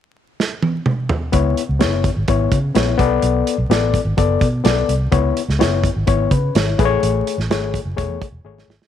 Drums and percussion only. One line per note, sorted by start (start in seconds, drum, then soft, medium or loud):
0.40 snare medium
0.62 high tom medium
0.86 mid tom medium
1.09 floor tom medium
1.33 kick medium
1.33 closed hi-hat medium
1.57 closed hi-hat medium
1.81 snare loud
1.81 closed hi-hat medium
2.04 kick medium
2.04 closed hi-hat medium
2.28 kick medium
2.28 closed hi-hat medium
2.52 kick medium
2.52 closed hi-hat medium
2.75 snare loud
2.75 closed hi-hat medium
2.99 kick medium
2.99 closed hi-hat medium
3.22 closed hi-hat medium
3.47 closed hi-hat medium
3.71 snare loud
3.71 closed hi-hat medium
3.94 kick medium
3.94 closed hi-hat medium
4.18 kick medium
4.18 closed hi-hat medium
4.41 kick medium
4.41 closed hi-hat medium
4.65 snare loud
4.65 closed hi-hat medium
4.89 closed hi-hat medium
5.12 kick loud
5.12 closed hi-hat medium
5.37 closed hi-hat medium
5.49 snare soft
5.61 snare loud
5.61 closed hi-hat medium
5.84 kick medium
5.84 closed hi-hat medium
6.07 kick medium
6.07 closed hi-hat medium
6.31 kick loud
6.31 closed hi-hat medium
6.55 snare loud
6.55 closed hi-hat medium
6.79 kick loud
6.79 closed hi-hat medium
7.03 closed hi-hat medium
7.27 closed hi-hat medium
7.40 snare soft
7.51 snare loud
7.51 closed hi-hat medium
7.74 kick medium
7.74 closed hi-hat medium
7.98 kick medium
7.98 closed hi-hat medium
8.22 kick medium
8.22 closed hi-hat medium
8.58 snare soft
8.70 snare medium
8.82 snare medium